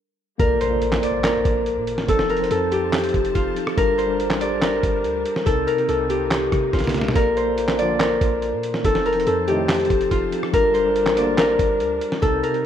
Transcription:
0.38 A#1 F3 A#3 D4 F4 A4 A#4 D5, kick, closed hi-hat, impact
0.61 C5, closed hi-hat
0.69 A#3 F4 A4 D5
0.82 closed hi-hat
0.92 snare, clap
1.01 A#3 F4 A#4 D5, closed hi-hat
1.24 A#4, snare, clap, closed hi-hat
1.45 A#1, kick, closed hi-hat
1.66 closed hi-hat
1.77 A#2
1.87 closed hi-hat
1.98 snare
2.07 F1 F3 C4 D#4 A4 A5, kick, closed hi-hat
2.19 snare
2.30 A#4, closed hi-hat
2.37 F3 C4, closed hi-hat
2.41 D#4 C5, closed hi-hat
2.51 F2 A4, closed hi-hat
2.71 G4, closed hi-hat
2.93 snare, clap, closed hi-hat
2.98 closed hi-hat
3.04 closed hi-hat
3.09 closed hi-hat
3.14 F1, kick, closed hi-hat
3.25 closed hi-hat
3.35 F1 F4, kick, closed hi-hat
3.55 F3 C4 D#4 A4, closed hi-hat
3.67 cross-stick
3.76 G1 G3 D4 A4 A#4, kick, closed hi-hat
3.98 C5, closed hi-hat
4.07 G3 D4 A4 A#4
4.20 closed hi-hat
4.30 A1, snare, clap
4.39 G3 D4 G4 A#4 D5, closed hi-hat
4.62 A#4, snare, clap, closed hi-hat
4.83 G1, kick, closed hi-hat
5.04 D2, closed hi-hat
5.26 closed hi-hat
5.36 snare
5.45 C2 C3 A#3 C4 D#4 A4 A#4, kick, closed hi-hat
5.67 A#4, closed hi-hat
5.76 C3 C4 D#4 A#4, closed hi-hat
5.88 C2 A4, closed hi-hat
6.09 G4, closed hi-hat
6.31 snare, clap, closed hi-hat
6.52 C3, kick, cross-stick, closed hi-hat
6.73 C2 F4, kick, snare, closed hi-hat
6.79 snare, closed hi-hat
6.84 snare, closed hi-hat
6.89 C3, closed hi-hat
6.94 C4 D#4 A#4, snare, closed hi-hat
7.01 snare
7.08 snare
7.14 A#1 F3 A#3 D4 F4 A4 A#4 D5, kick, closed hi-hat
7.37 C5, closed hi-hat
7.46 A#3 F4 A4 D5
7.58 closed hi-hat
7.68 snare, clap
7.77 A#2 D3 F3 A#3 F4 A#4 D5, closed hi-hat
8.00 A#4, snare, clap, closed hi-hat
8.21 A#1, kick, closed hi-hat
8.42 closed hi-hat
8.53 A#2
8.63 closed hi-hat
8.74 snare
8.83 F1 F3 C4 D#4 A4 A5, kick, closed hi-hat
8.95 snare
9.06 A#4, closed hi-hat
9.13 F3 C4, closed hi-hat
9.17 D#4 C5, closed hi-hat
9.27 F2 A4, closed hi-hat
9.47 A2 C3 D#3 G4, closed hi-hat
9.69 snare, clap, closed hi-hat
9.74 closed hi-hat
9.80 closed hi-hat
9.85 closed hi-hat
9.90 F1, kick, closed hi-hat
10.01 closed hi-hat
10.11 F1 F4, kick, closed hi-hat
10.31 F3 C4 D#4 A4, closed hi-hat
10.43 cross-stick
10.52 G1 G3 D4 A4 A#4, kick, closed hi-hat
10.74 C5, closed hi-hat
10.83 G3 D4 A4 A#4
10.96 closed hi-hat
11.06 A1, snare, clap
11.15 D2 D3 G3 A#3 D4 G4 A#4 D5, closed hi-hat
11.38 A#4, snare, clap, closed hi-hat
11.59 G1, kick, closed hi-hat
11.80 D2, closed hi-hat
12.01 closed hi-hat
12.12 snare
12.21 C2 C3 G3 A#3 C4 D#4 A4 A#4, kick, closed hi-hat
12.43 A#4, closed hi-hat
12.52 C3 C4 D#4 A#4, closed hi-hat

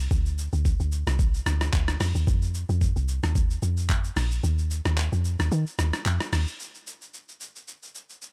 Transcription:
0.11 D2, kick, shaker
0.26 shaker
0.38 shaker
0.53 D2, shaker
0.65 kick, shaker
0.80 D2, shaker
0.92 shaker
1.07 C2, cross-stick, shaker
1.19 kick, shaker
1.34 shaker
1.46 D2, cross-stick, shaker
1.61 cross-stick, shaker
1.73 D2, kick, clap, shaker
1.88 cross-stick, shaker
2.00 F2, cross-stick, open hi-hat, shaker
2.15 D#2, shaker
2.27 F2, kick, shaker
2.42 shaker
2.54 shaker
2.69 F2, shaker
2.81 kick, shaker
2.96 C2, shaker
3.08 shaker
3.23 D#2, cross-stick, shaker
3.35 kick, shaker
3.50 shaker
3.62 F2, shaker
3.77 shaker
3.89 kick, clap, shaker
4.04 shaker
4.16 A#1, cross-stick, open hi-hat, shaker
4.31 shaker
4.43 D#2, shaker
4.58 shaker
4.71 shaker
4.85 D#2, cross-stick, shaker
4.97 clap, shaker
5.12 F2, shaker
5.24 shaker
5.39 D#2, cross-stick, shaker
5.52 D#3, shaker
5.67 shaker
5.79 D#2, cross-stick, shaker
5.93 cross-stick, shaker
6.06 F2, clap, shaker
6.20 cross-stick, shaker
6.33 D#2, cross-stick, open hi-hat, shaker
6.47 shaker
6.60 shaker
6.75 shaker
6.87 shaker
7.02 shaker
7.14 shaker
7.29 shaker
7.41 shaker
7.56 shaker
7.68 shaker
7.83 shaker
7.95 shaker
8.10 shaker
8.22 shaker

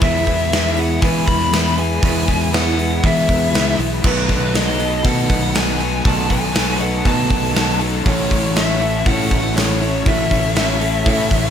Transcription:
Already playing: E4 G#4 B4 B5
0.01 E2 B2 E3 G#3 B3 E5, kick, open hi-hat
0.05 E4
0.26 E3 G#3 B3 E4, kick, open hi-hat
0.51 E3 G#3 B3 E4, snare, open hi-hat
0.75 G#3 B3 E4 G#4 F#5, open hi-hat
0.80 E3
1.01 E2 B2 E3 G#3 B3 E4 G#5, kick, open hi-hat
1.26 E2 B3 B5, kick, open hi-hat
1.52 E3 G#3 B3 E4, snare, open hi-hat
1.77 E3 G#3 B3 E4 G#5, open hi-hat
2.01 E2 B2 E3 G#3 B3 E4, kick, open hi-hat
2.26 E3 G#3 B3 E4, kick, open hi-hat
2.51 E3 G#3 B3 E4 F#5, snare, open hi-hat
2.77 E3 G#3 B3 E4 G#4, open hi-hat
3.01 E2 B2 E3 G#3 B3 E4, kick, open hi-hat
3.06 E5
3.29 E2 B3, kick, open hi-hat
3.52 C#2 E3 G#3 B3 E4, snare, open hi-hat
3.77 B1 G#3 B3 E4, open hi-hat
3.81 E3
4.02 B1 B2 D#3 F#3 A3 B3 D#4 A4 D#5 F#5, kick, crash
4.06 F#4 B4
4.27 F#3 B3 D#4 F#4 A4, kick, open hi-hat
4.31 A3
4.52 D#3 F#3 A3 B3 D#4 F#4 D#5, snare, open hi-hat
4.56 A4
4.78 A3 B3 D#4 F#4 A4, open hi-hat
4.82 F#3
5.03 B2 D#3 F#3 A3 B3 D#4 F#4 A4 F#5, kick, open hi-hat
5.30 B1 F#3, kick, open hi-hat
5.54 D#3 F#3 A3 B3 D#4 F#4 A4 G#5, snare, open hi-hat
5.79 F#3 B3 D#4 F#4 A4, open hi-hat
5.83 A3
6.03 B1 B2 D#3 F#3 A3 B3 D#4 A4 A5, kick, open hi-hat
6.08 F#4 C#6
6.28 F#3 B3 D#4 F#4 A4 G#5, kick, open hi-hat
6.33 A3
6.53 D#3 F#3 A3 B3 D#4 A4, snare, open hi-hat
6.57 F#4
6.78 F#3 B3 D#4 F#4 A4 F#5, open hi-hat
6.83 A3
7.03 B2 D#3 F#3 A3 B3 D#4 F#4 A4 A5, kick, open hi-hat
7.30 B1 F#3, kick, open hi-hat
7.54 D#3 F#3 A3 B3 D#4 A4, snare, open hi-hat
7.58 F#4
7.79 F#3 A3 B3 D#4 F#4 A4, open hi-hat
8.04 A1 A2 E3 F#3 A3 C#4 E4 A4 C#5 E5, kick, open hi-hat
8.08 F#4
8.29 A3 C#4 E4 F#4 A4, kick, open hi-hat
8.55 E3 A3 C#4 E4 F#4 A4 E5, snare, open hi-hat
8.80 A3 C#4 E4 F#4 A4, open hi-hat
9.05 A2 E3 A3 C#4 E4 A4 F#5, kick, open hi-hat
9.10 F#4
9.31 A1 F#3, kick, open hi-hat
9.54 E3 A3 C#4 E4 F#4 A4 C#5, snare, open hi-hat
9.80 F#3 A3 C#4 E4 F#4 A4, open hi-hat
10.05 A1 A2 E3 F#3 A3 C#4 E4 F#4 A4 E5 G#5, kick, open hi-hat
10.30 A3 C#4 E4 F#4 A4, kick, open hi-hat
10.55 E3 A3 C#4 E4 A4, snare, open hi-hat
10.59 F#4
10.80 A3 C#4 E4 F#4 A4, open hi-hat
11.05 A2 E3 A3 C#4 E4 F#4 A4, kick, open hi-hat
11.31 A1 F#3, kick, open hi-hat

